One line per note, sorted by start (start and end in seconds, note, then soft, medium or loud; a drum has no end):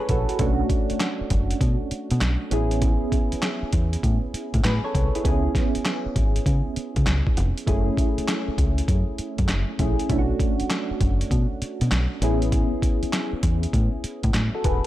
0.00 0.36 A3 medium
0.00 0.36 C#4 medium
0.00 0.36 E4 medium
0.00 0.42 G#4 medium
0.00 0.10 A4 soft
0.00 0.41 B4 medium
0.00 0.42 C#5 medium
0.09 0.24 A#1 medium
0.09 0.28 F#4 medium
0.09 0.29 A4 medium
0.09 kick medium
0.09 closed hi-hat medium
0.29 0.40 F#4 medium
0.29 closed hi-hat medium
0.39 0.61 B1 loud
0.39 2.47 A3 medium
0.39 2.48 C#4 medium
0.39 2.48 D4 medium
0.39 2.49 F#4 medium
0.39 kick loud
0.39 closed hi-hat medium
0.70 kick loud
0.70 closed hi-hat medium
0.90 muted fingered electric bass stroke soft
0.90 closed hi-hat medium
1.00 snare loud
1.00 clap loud
1.00 closed hi-hat medium
1.21 muted fingered electric bass stroke soft
1.30 1.52 F#1 medium
1.30 kick medium
1.30 closed hi-hat medium
1.51 closed hi-hat medium
1.61 1.75 B2 medium
1.61 kick medium
1.61 closed hi-hat medium
1.91 muted fingered electric bass stroke soft
1.91 closed hi-hat medium
2.11 2.19 B2 medium
2.11 closed hi-hat medium
2.21 2.36 B1 medium
2.21 snare loud
2.21 clap medium
2.21 closed hi-hat medium
2.51 2.95 A1 loud
2.51 4.90 B3 medium
2.51 4.90 C#4 medium
2.51 4.60 E4 medium
2.51 4.61 G#4 medium
2.51 closed hi-hat medium
2.71 closed hi-hat medium
2.82 kick loud
2.82 closed hi-hat medium
3.12 kick medium
3.12 closed hi-hat medium
3.32 muted fingered electric bass stroke soft
3.32 closed hi-hat medium
3.42 snare loud
3.42 clap loud
3.42 closed hi-hat medium
3.63 muted fingered electric bass stroke soft
3.73 3.95 E2 medium
3.73 kick medium
3.73 closed hi-hat medium
3.93 closed hi-hat medium
4.03 4.18 A2 medium
4.03 kick medium
4.03 closed hi-hat medium
4.34 muted fingered electric bass stroke soft
4.34 closed hi-hat medium
4.54 4.61 A2 medium
4.54 kick medium
4.54 closed hi-hat medium
4.64 4.79 A2 medium
4.64 4.84 G#4 medium
4.64 4.83 B4 medium
4.64 snare loud
4.64 clap medium
4.64 closed hi-hat medium
4.84 5.13 A4 medium
4.84 5.13 C#5 medium
4.95 5.09 C2 loud
4.95 kick medium
4.95 closed hi-hat medium
5.15 5.25 E4 medium
5.15 5.25 G#4 medium
5.15 closed hi-hat medium
5.24 5.47 C#2 loud
5.24 7.63 B3 medium
5.24 7.63 C#4 medium
5.24 7.64 E4 medium
5.24 7.64 G#4 medium
5.24 kick loud
5.24 closed hi-hat medium
5.55 kick loud
5.55 snare medium
5.55 closed hi-hat medium
5.75 muted fingered electric bass stroke soft
5.75 closed hi-hat medium
5.85 snare loud
5.85 clap loud
5.85 closed hi-hat medium
6.06 muted fingered electric bass stroke soft
6.16 6.38 G#1 medium
6.16 kick medium
6.16 closed hi-hat medium
6.36 closed hi-hat medium
6.46 6.60 C#3 medium
6.46 kick medium
6.46 closed hi-hat medium
6.76 muted fingered electric bass stroke soft
6.76 closed hi-hat medium
6.96 7.04 C#3 medium
6.96 kick medium
6.96 closed hi-hat medium
7.06 7.21 C#2 medium
7.06 snare loud
7.06 clap medium
7.06 closed hi-hat medium
7.27 kick medium
7.37 7.51 F1 loud
7.37 closed hi-hat medium
7.58 closed hi-hat medium
7.67 7.89 F#1 loud
7.67 9.75 A3 medium
7.67 9.75 C#4 medium
7.67 9.76 E4 medium
7.67 9.76 G#4 medium
7.67 kick loud
7.67 closed hi-hat medium
7.97 kick medium
7.97 closed hi-hat medium
8.18 muted fingered electric bass stroke soft
8.18 closed hi-hat medium
8.28 snare loud
8.28 clap medium
8.28 closed hi-hat medium
8.48 muted fingered electric bass stroke soft
8.58 8.80 C#2 medium
8.58 kick medium
8.58 closed hi-hat medium
8.78 closed hi-hat medium
8.88 9.03 F#2 loud
8.88 kick loud
8.88 closed hi-hat medium
9.18 muted fingered electric bass stroke soft
9.18 closed hi-hat medium
9.38 9.46 F#2 loud
9.38 kick medium
9.38 closed hi-hat medium
9.48 9.63 F#1 medium
9.48 snare loud
9.48 clap medium
9.48 closed hi-hat medium
9.79 9.94 A#1 medium
9.79 10.08 A3 medium
9.79 10.09 C#4 soft
9.79 10.10 E4 medium
9.79 10.10 G#4 medium
9.79 kick medium
9.79 closed hi-hat medium
9.99 closed hi-hat medium
10.10 10.31 B1 loud
10.10 12.18 A3 medium
10.10 12.18 C#4 medium
10.10 12.18 D4 medium
10.10 10.19 E4 medium
10.10 kick loud
10.10 closed hi-hat medium
10.18 12.22 F#4 medium
10.40 kick medium
10.40 closed hi-hat medium
10.60 muted fingered electric bass stroke soft
10.60 closed hi-hat medium
10.70 snare loud
10.70 clap loud
10.70 closed hi-hat medium
10.91 muted fingered electric bass stroke soft
11.01 11.22 F#1 medium
11.01 kick medium
11.01 closed hi-hat medium
11.21 closed hi-hat medium
11.31 11.45 B2 medium
11.31 kick loud
11.31 closed hi-hat medium
11.62 muted fingered electric bass stroke soft
11.62 closed hi-hat medium
11.81 11.89 B2 medium
11.81 closed hi-hat medium
11.91 12.06 B1 medium
11.91 snare loud
11.91 clap medium
11.91 closed hi-hat medium
12.21 12.65 A1 loud
12.21 14.60 B3 medium
12.21 14.61 C#4 medium
12.21 14.61 E4 medium
12.21 14.31 G#4 medium
12.21 closed hi-hat medium
12.42 closed hi-hat medium
12.52 kick loud
12.52 closed hi-hat medium
12.82 kick medium
12.82 closed hi-hat medium
13.03 muted fingered electric bass stroke soft
13.03 closed hi-hat soft
13.13 snare loud
13.13 clap medium
13.13 closed hi-hat medium
13.33 muted fingered electric bass stroke soft
13.43 13.65 E2 medium
13.43 kick medium
13.43 closed hi-hat medium
13.63 closed hi-hat medium
13.73 13.88 A2 medium
13.73 kick medium
13.73 closed hi-hat medium
14.04 muted fingered electric bass stroke soft
14.04 closed hi-hat medium
14.23 14.31 A2 loud
14.23 kick medium
14.23 closed hi-hat medium
14.34 14.48 A2 medium
14.34 snare loud
14.34 clap medium
14.34 closed hi-hat medium
14.55 14.64 F#4 medium
14.55 14.64 A4 medium
14.64 14.79 D#1 medium
14.64 14.84 G#4 medium
14.64 14.84 B4 medium
14.64 kick medium
14.64 closed hi-hat medium